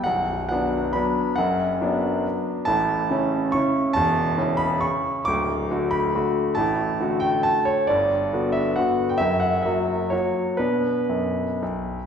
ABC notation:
X:1
M:3/4
L:1/16
Q:1/4=136
K:Bm
V:1 name="Grand piano"
f4 f4 b4 | f8 z4 | a8 c'4 | a6 b2 c'4 |
d'6 b6 | a6 g2 a2 c2 | d6 e2 f3 g | e2 f2 e4 c4 |
B12 |]
V:2 name="Grand piano" clef=bass
[B,,,,B,,,]4 [F,B,D]4 [F,B,D]4 | [F,,,F,,]4 [F,B,D]8 | [A,,,A,,]4 [C,CE]4 [C,CE]4 | [E,,,E,,]4 [C,CE]8 |
[D,,,D,,]4 [D,A,F]4 [D,A,F]4 | [A,,,A,,]4 [D,A,F]8 | [G,,,G,,]4 [D,B,F]4 [D,B,F]4 | [F,,,F,,]4 [F,^A,F]4 [F,A,F]4 |
[B,,B,D]4 F,,4 B,,,4 |]